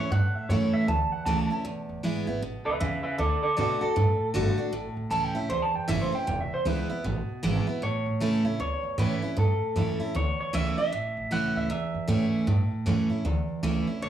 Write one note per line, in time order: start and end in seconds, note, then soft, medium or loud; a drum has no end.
0.00 0.11 C#4 medium
0.00 0.11 E4 medium
0.00 0.11 C#5 medium
0.11 0.26 G2 medium
0.11 0.85 A2 medium
0.11 0.35 F#5 medium
0.35 0.49 E5 medium
0.35 muted upright bass stroke medium
0.49 0.64 F#2 medium
0.49 0.87 E3 medium
0.49 0.87 A3 medium
0.49 0.87 C#4 medium
0.49 0.88 E4 medium
0.49 0.73 C#5 medium
0.74 0.88 E5 loud
0.74 muted upright bass stroke medium
0.88 1.03 D2 medium
0.88 1.62 E2 medium
0.88 1.12 A5 loud
1.12 1.25 F#5 medium
1.12 muted upright bass stroke medium
1.26 1.41 C#2 medium
1.26 1.49 E3 medium
1.26 1.50 A3 loud
1.26 1.50 C#4 loud
1.26 1.49 E4 loud
1.26 1.63 A5 loud
1.50 1.65 C#4 medium
1.50 1.64 E4 medium
1.65 1.80 E1 medium
1.65 2.39 E2 medium
1.89 1.98 E1 medium
2.03 2.18 G#1 medium
2.03 2.26 E3 medium
2.03 2.27 G#3 medium
2.03 2.27 B3 medium
2.03 2.26 E4 medium
2.27 2.37 G#1 loud
2.27 2.42 B3 soft
2.27 2.41 E4 medium
2.42 2.57 A1 loud
2.42 2.79 B2 medium
2.65 2.75 C#2 medium
2.65 2.79 B4 medium
2.65 2.80 E5 loud
2.80 2.96 E2 medium
2.80 3.18 C#3 loud
2.80 3.02 B4 medium
2.80 3.03 E5 loud
3.03 3.17 B4 medium
3.03 3.18 E5 medium
3.03 muted upright bass stroke medium
3.18 3.34 D2 loud
3.18 3.55 D3 medium
3.18 3.41 A4 medium
3.18 3.42 D5 loud
3.43 3.56 A4 medium
3.43 3.56 D5 loud
3.43 muted upright bass stroke medium
3.57 3.73 B2 loud
3.57 3.80 D3 medium
3.57 3.80 A3 medium
3.57 3.81 D4 medium
3.57 3.80 F#4 medium
3.57 3.80 A4 medium
3.57 3.81 D5 medium
3.81 3.96 D4 soft
3.81 3.95 F#4 medium
3.81 4.94 A4 loud
3.81 muted upright bass stroke medium
3.96 4.11 G2 loud
3.96 4.70 A2 medium
4.20 muted upright bass stroke medium
4.34 4.49 G1 medium
4.34 4.57 D3 loud
4.34 4.58 A3 loud
4.34 4.58 D4 loud
4.34 4.56 F#4 loud
4.58 4.73 D4 soft
4.58 4.72 F#4 medium
4.73 4.88 A1 medium
4.73 5.47 A2 medium
4.97 5.06 A1 medium
5.10 5.26 C#2 medium
5.10 5.34 E3 medium
5.10 5.35 A3 medium
5.10 5.35 C#4 medium
5.10 5.34 E4 medium
5.10 5.24 A5 loud
5.24 5.37 G5 loud
5.35 5.45 C#2 medium
5.35 5.50 C#4 medium
5.35 5.49 E4 medium
5.35 5.50 E5 medium
5.50 5.65 D2 loud
5.50 6.24 E2 medium
5.50 5.62 C5 loud
5.62 5.75 A5 loud
5.74 5.83 F#2 medium
5.74 5.88 G5 medium
5.88 6.04 F#1 loud
5.88 6.11 E3 loud
5.88 6.12 A3 loud
5.88 6.12 C#4 loud
5.88 6.11 E4 loud
5.88 6.01 E5 loud
6.01 6.14 C5 medium
6.12 6.27 C#4 soft
6.12 6.27 E4 medium
6.12 6.27 G5 medium
6.12 muted upright bass stroke medium
6.27 6.42 E1 loud
6.27 7.02 E2 medium
6.27 6.40 G5 medium
6.40 6.53 E5 medium
6.51 6.67 C5 loud
6.51 muted upright bass stroke medium
6.65 6.80 C#2 loud
6.65 6.89 E3 medium
6.65 6.89 G#3 medium
6.65 6.90 B3 medium
6.65 6.88 E4 medium
6.65 7.04 B4 loud
6.90 7.05 B3 soft
6.90 7.04 E4 medium
6.90 muted upright bass stroke medium
7.04 7.19 A1 loud
7.04 7.79 B2 medium
7.29 muted upright bass stroke medium
7.43 7.58 G#1 loud
7.43 7.66 E3 loud
7.43 7.67 G#3 loud
7.43 7.67 B3 loud
7.43 7.66 E4 loud
7.67 7.82 B3 soft
7.67 7.81 E4 medium
7.82 7.97 A1 medium
7.82 8.57 A2 medium
7.82 8.59 C#5 medium
8.06 8.15 A1 medium
8.20 8.35 C#2 medium
8.20 8.44 E3 medium
8.20 8.44 A3 medium
8.20 8.45 C#4 medium
8.20 8.44 E4 loud
8.44 8.54 C#2 medium
8.44 8.60 C#4 medium
8.44 8.59 E4 medium
8.59 8.74 D2 medium
8.59 9.34 E2 medium
8.59 9.00 C#5 medium
8.83 8.92 F#2 medium
8.98 9.13 A2 medium
8.98 9.21 E3 loud
8.98 9.22 A3 loud
8.98 9.22 C#4 loud
8.98 9.21 E4 loud
8.98 9.38 B4 medium
9.22 9.37 C#4 medium
9.22 9.37 E4 medium
9.22 muted upright bass stroke medium
9.37 9.52 G2 loud
9.37 10.12 A2 medium
9.37 10.18 A4 medium
9.62 muted upright bass stroke medium
9.76 9.91 F#2 medium
9.76 9.99 E3 medium
9.76 9.99 A3 medium
9.76 10.00 C#4 medium
9.76 9.98 E4 medium
10.00 10.15 C#4 medium
10.00 10.14 E4 medium
10.00 muted upright bass stroke medium
10.15 10.30 D2 medium
10.15 10.89 E2 medium
10.15 10.39 C#5 loud
10.40 10.54 C#5 medium
10.40 muted upright bass stroke medium
10.53 10.69 C#2 medium
10.53 10.77 E3 loud
10.53 10.77 A3 loud
10.53 10.77 C#4 loud
10.53 10.77 E4 loud
10.53 10.77 E5 loud
10.78 10.92 C#4 medium
10.78 10.92 E4 medium
10.78 11.32 E5 loud
10.78 muted upright bass stroke medium
10.92 11.07 A1 medium
10.92 11.67 A2 medium
11.17 11.26 A1 medium
11.31 11.46 C#2 loud
11.31 11.68 E3 medium
11.31 11.68 A3 medium
11.31 11.69 C#4 medium
11.31 11.69 E4 medium
11.31 11.57 F#5 loud
11.56 11.64 C#2 loud
11.56 11.62 E5 loud
11.70 11.85 D2 medium
11.70 12.44 E2 medium
11.70 12.44 E5 medium
11.94 12.03 F#2 medium
12.08 12.23 A2 medium
12.08 12.45 E3 loud
12.08 12.46 A3 medium
12.08 12.46 C#4 loud
12.08 12.46 E4 loud
12.33 muted upright bass stroke medium
12.47 12.62 G2 medium
12.47 13.22 A2 medium
12.72 muted upright bass stroke medium
12.86 13.01 F#2 medium
12.86 13.09 E3 medium
12.86 13.09 A3 medium
12.86 13.10 C#4 medium
12.86 13.08 E4 medium
13.10 13.25 C#4 soft
13.10 13.24 E4 medium
13.10 muted upright bass stroke medium
13.25 13.39 D2 medium
13.25 13.99 E2 medium
13.49 muted upright bass stroke medium
13.63 13.78 C#2 medium
13.63 13.86 E3 medium
13.63 13.87 A3 loud
13.63 13.87 C#4 loud
13.63 13.86 E4 loud
13.87 14.02 C#4 soft
13.87 14.01 E4 medium
14.02 14.09 D2 medium
14.02 14.09 D3 medium
14.02 14.09 C#5 medium